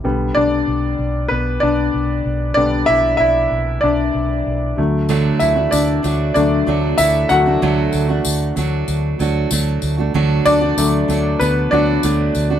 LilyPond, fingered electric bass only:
\new Staff \with { instrumentName = "Fingered electric bass" } { \clef bass \time 4/4 \key g \major \tempo 4 = 95 b,,8 b,,8 b,,8 b,,8 b,,8 b,,8 b,,8 b,,8 | b,,8 b,,8 b,,8 b,,8 b,,8 b,,8 b,,8 d,8~ | d,8 d,8 d,8 d,8 d,8 d,8 d,8 d,8 | d,8 d,8 d,8 d,8 d,8 d,8 d,8 d,8 |
d,8 d,8 d,8 d,8 d,8 d,8 d,8 d,8 | }